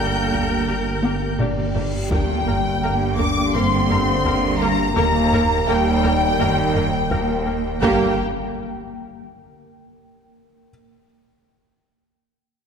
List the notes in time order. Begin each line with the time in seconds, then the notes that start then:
Already playing: G1 D3 G3 A#3 G4 A#4 G5 G6, reverse cymbal
0.32 A#3 G4, taiko
0.68 G1 A#3 G4
1.04 A#3 G4, taiko high
1.39 G1 A#3 D4 G4 D5, taiko low-mid
1.75 A#3 G4, taiko low
2.10 G1 G2 D3 G3 A#3 G4 A#4 G5, taiko, impact
2.46 A#3 A#4, taiko low
2.82 G1 G2 A#3 A#4
3.18 A#3 D4 A#4 D6, taiko
3.52 G1 G2 A#3 C4 A#4 C6, taiko low
3.90 A#3 A#4, taiko low
4.25 G1 G2 A#3 A#4, taiko
4.60 A#3 A#4 A#5
4.96 D#1 D#2 D#3 A#3 A#4 A#5, taiko
5.32 A#3 A#4, taiko low
5.67 D#2 G3 A#3 A#4 G5
6.04 A#3 A#4, taiko
6.39 D#2 A#3 A#4, taiko low
6.75 A#3 A#4, taiko low
7.11 D#2 A#3 A#4, taiko
7.46 A#3 A#4
7.82 G1 G2 D3 G3 A#3 G4 G5, impact